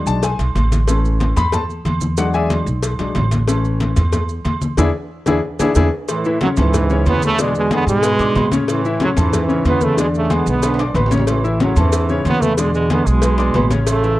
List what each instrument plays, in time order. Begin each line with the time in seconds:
0.06 upright bass B1, grand piano F#3 G#3 D4 A5, high conga, maracas
0.23 grand piano G#5, cowbell, high conga, low agogo, maracas
0.39 upright bass B1, cowbell, high conga, low agogo, maracas
0.55 upright bass A1, cowbell, high conga, low agogo, maracas
0.72 cowbell, high conga, maracas
0.87 grand piano E3 A3 C#4, cowbell, high conga, low agogo, maracas
1.05 high conga, maracas
1.20 cowbell, high conga, low agogo, maracas
1.36 upright bass E2, grand piano B5, cowbell, low conga, low agogo, maracas
1.52 grand piano A5, cowbell, high conga, low conga, low agogo, maracas
1.69 high conga, maracas
1.85 upright bass E2, cowbell, high conga, low agogo, maracas
2.01 high conga, maracas
2.17 grand piano F#3 G#3 D4 F#4 F#5, cowbell, high conga, low agogo, maracas
2.34 grand piano G#4 D5 E5 G#5, high conga, maracas
2.50 cowbell, high conga, low agogo, maracas
2.66 upright bass B1, high conga, maracas
2.83 cowbell, high conga, low agogo, maracas
2.99 upright bass B1, grand piano F#3 G#3 D4, cowbell, high conga, low agogo, maracas
3.15 upright bass A1, cowbell, high conga, low timbale, low agogo, maracas
3.31 cowbell, high conga, maracas
3.47 grand piano E3 A3 C#4, cowbell, high conga, low agogo, maracas
3.65 high conga, maracas
3.80 cowbell, high conga, low agogo, maracas
3.96 upright bass E2, cowbell, low conga, low agogo, maracas
4.12 cowbell, high conga, low conga, low agogo, maracas
4.29 high conga, maracas
4.45 upright bass E2, cowbell, high conga, low agogo, maracas
4.62 high conga, maracas
4.77 upright bass E2, grand piano D4 E4 G#4, cowbell, high conga, high timbale, maracas
5.26 upright bass E2, grand piano D4 E4 G#4, cowbell, high conga, high timbale, maracas
5.59 upright bass E2, grand piano D4 E4 G#4, cowbell, high conga, high timbale, maracas
5.75 upright bass E2, grand piano D4 E4 G#4, cowbell, high conga, high timbale, maracas
6.08 trombone section A2 E3, cowbell, high conga, low agogo, maracas
6.25 grand piano E3 E4 E5, high conga, maracas
6.41 trombone section A2 F#3, grand piano C#3 C#4 C#5, cowbell, high conga, low agogo, maracas
6.57 upright bass C#2, trombone section G#2 E3, grand piano C#4 A4 A5, cowbell, low conga, low agogo, maracas
6.74 cowbell, high conga, low conga, low agogo, maracas
6.90 grand piano C#3 C#4 C#5, high conga, maracas
7.06 upright bass E2, trombone section E3 B3, cowbell, high conga, low timbale, low agogo, maracas
7.22 trombone section C#3 A3, grand piano B3 B4 B5, high conga, maracas
7.39 trombone section B2 G#3, grand piano D3 D4 D5, cowbell, high conga, low agogo, maracas
7.55 trombone section B2 G#3, high conga, maracas
7.71 trombone section D3 B3, grand piano G#3 G#4 G#5, cowbell, high conga, low agogo, maracas
7.87 upright bass G#2, trombone section B2 G#3, high conga, maracas
8.03 grand piano B3 B4 B5, cowbell, high conga, low agogo, maracas
8.19 upright bass G#2, grand piano D4 D5 D6, cowbell, high conga, low agogo, maracas
8.35 upright bass A2, grand piano B3 B4 B5, cowbell, high conga, low timbale, low agogo, maracas
8.51 grand piano C#3 C#4 C#5, cowbell, high conga, maracas
8.68 trombone section A2 E3, cowbell, high conga, low agogo, maracas
8.84 grand piano E3 E4 E5, high conga, maracas
9.00 trombone section A2 F#3, grand piano C#3 C#4 C#5, cowbell, high conga, low agogo, maracas
9.16 upright bass E2, trombone section G#2 E3, grand piano C#4 A4 A5, cowbell, low conga, low agogo, maracas
9.33 cowbell, high conga, low conga, low agogo, maracas
9.48 grand piano C#3 C#4 C#5, high conga, maracas
9.65 upright bass E2, trombone section E3 B3, cowbell, high conga, low timbale, low agogo, maracas
9.81 trombone section C#3 A3, grand piano B3 B4 B5, high conga, maracas
9.97 trombone section B2 G#3, grand piano D3 D4 D5, cowbell, high conga, low agogo, maracas
10.14 trombone section C#3 A3, high conga, maracas
10.30 trombone section D3 B3, grand piano G#3 G#4 G#5, cowbell, high conga, low agogo, maracas
10.46 upright bass B1, trombone section D3 B3, high conga, maracas
10.62 grand piano B3 B4 B5, cowbell, high conga, high timbale, low agogo, maracas
10.74 high timbale
10.79 grand piano D4 D5 D6, cowbell, high conga, low agogo, maracas
10.94 upright bass A1, grand piano B3 B4 B5, cowbell, high conga, low timbale, low agogo, maracas
11.06 low timbale
11.11 grand piano C#3 C#4 C#5, cowbell, high conga, maracas
11.17 low timbale
11.27 trombone section A2 E3, cowbell, high conga, low agogo, maracas
11.44 grand piano E3 E4 E5, high conga, maracas
11.60 trombone section A2 F#3, grand piano C#3 C#4 C#5, cowbell, high conga, low agogo, maracas
11.76 upright bass E2, trombone section G#2 E3, grand piano C#4 A4 A5, cowbell, low conga, low agogo, maracas
11.92 cowbell, high conga, low agogo, maracas
12.09 grand piano C#3 C#4 C#5, high conga, maracas
12.25 upright bass E2, trombone section E3 B3, cowbell, high conga, low timbale, low agogo, maracas
12.41 trombone section C#3 A3, grand piano B3 B4 B5, high conga, maracas
12.57 trombone section B2 G#3, grand piano D3 D4 D5, cowbell, high conga, low agogo, maracas
12.73 trombone section B2 G#3, high conga, maracas
12.90 trombone section D3 B3, grand piano G#3 G#4 G#5, cowbell, high conga, low agogo, maracas
13.06 upright bass B1, trombone section B2 G#3, high conga, maracas
13.22 grand piano B3 B4 B5, cowbell, high conga, low agogo, maracas
13.38 grand piano D4 D5 D6, cowbell, high conga, low agogo, maracas
13.54 upright bass A1, grand piano B3 B4 B5, cowbell, high conga, low timbale, low agogo, maracas
13.70 grand piano C#3 C#4 C#5, cowbell, high conga, maracas
13.87 trombone section C#3 A3, cowbell, high conga, low agogo, maracas
14.03 grand piano E3 E4 E5, high conga, maracas